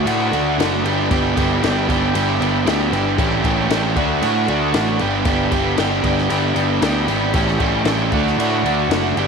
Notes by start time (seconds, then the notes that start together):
Already playing: F#4 B4 A5 D6
0.05 A2 D3 A3 D4 F#4, crash
0.32 D2 D3 A3 D4 F#4, crash
0.58 F#1 D3 A3 D4 F#4, snare, crash
0.83 G1 G2 D3 G3 B3 D4 E4 G4 G5 D6, crash
1.09 G1 G2 D3 G3 B3 D4 G4, kick, crash
1.36 G1 G2 D3 G3 B3 D4 G4, kick, crash
1.62 G1 G2 D3 G3 B3 D4 G4, snare, crash
1.87 G1 G2 D3 G3 B3 D4 G4, kick, crash
2.13 G1 G2 D3 G3 B3 D4 G4, crash
2.39 G1 G2 D3 G3 B3 D4 G4, crash
2.65 D2 G2 D3 G3 B3 D4 G4, snare, crash
2.91 G1 G2 D3 G3 B3 D4 G4, crash
3.17 A1 A2 E3 G3 A3 C#4 G4 A4 C#6, kick, crash
3.43 A1 A2 E3 G3 A3 C#4 G4, kick, crash
3.69 A1 A2 E3 G3 A3 C#4 G4, snare, crash
3.95 D2 D3 A3 D4 F#4 B4 A5 D6, kick, crash
4.21 A2 D3 A3 D4 F#4, crash
4.47 D2 D3 A3 D4 F#4, crash
4.72 A1 D3 A3 D4 F#4, snare, crash
4.98 G1 G2 D3 G3 B3 D4 E4 G4 G5, crash
5.24 G1 G2 D3 G3 B3 D4 G4, kick, crash
5.50 G1 G2 D3 G3 B3 D4 G4, kick, crash
5.76 G1 G2 D3 G3 B3 D4 G4, snare, crash
6.02 G1 G2 D3 G3 B3 D4 G4, kick, crash
6.18 snare
6.28 G1 G2 D3 G3 B3 D4 G4, crash
6.54 G1 G2 D3 G3 B3 D4 G4, crash
6.81 D2 G2 D3 G3 B3 D4 G4, snare, crash
7.06 G#1 G2 D3 G3 B3 D4 G4, crash
7.32 A1 A2 E3 G3 A3 C#4 G4 A4 C#6, kick, crash
7.48 snare
7.58 A1 A2 E3 G3 A3 C#4 G4, kick, crash
7.85 A1 A2 E3 G3 A3 C#4 G4, snare, crash
8.11 D2 D3 A3 D4 F#4 B4 A5 D6, kick, crash
8.27 snare
8.36 A2 D3 A3 D4 F#4, crash
8.63 D2 D3 A3 D4 F#4, crash
8.89 F#1 D3 A3 D4 F#4, snare, crash
9.15 G1 G2 D3 G3 B3 D4 E4 G4 G5, crash